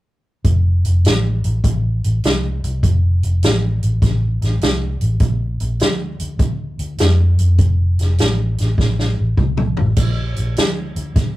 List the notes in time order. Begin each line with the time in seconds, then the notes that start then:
0.44 F1, kick, closed hi-hat
0.85 F1, closed hi-hat
1.05 A1, snare, closed hi-hat
1.44 A1, closed hi-hat
1.64 A1, kick, closed hi-hat
2.04 A1, closed hi-hat
2.24 C2, snare, closed hi-hat
2.64 C2, closed hi-hat
2.83 F1, kick, closed hi-hat
3.23 F1, closed hi-hat
3.43 A1, snare, closed hi-hat
3.82 A1, closed hi-hat
4.02 A1, kick, snare, closed hi-hat
4.41 A1, snare, closed hi-hat
4.61 C2, snare, closed hi-hat
5.01 A1, closed hi-hat
5.20 A#1, kick, closed hi-hat
5.60 A#1, closed hi-hat
5.80 D2, snare, closed hi-hat
6.20 D2, closed hi-hat
6.39 D2, kick, closed hi-hat
6.79 D2, closed hi-hat
6.98 F2, snare, closed hi-hat
7.39 F2, closed hi-hat
7.58 F1, kick, closed hi-hat
7.99 F1, snare, closed hi-hat
8.18 A1, snare, closed hi-hat
8.58 A1, snare, closed hi-hat
8.78 A1, kick, snare
8.99 snare
9.19 A1
9.37 C2, kick, mid tom
9.57 mid tom
9.77 A1, floor tom
9.97 A#1, kick, closed hi-hat, crash
10.36 A#1, closed hi-hat
10.56 D2, snare, closed hi-hat
10.96 D2, closed hi-hat
11.16 D2, kick, snare, closed hi-hat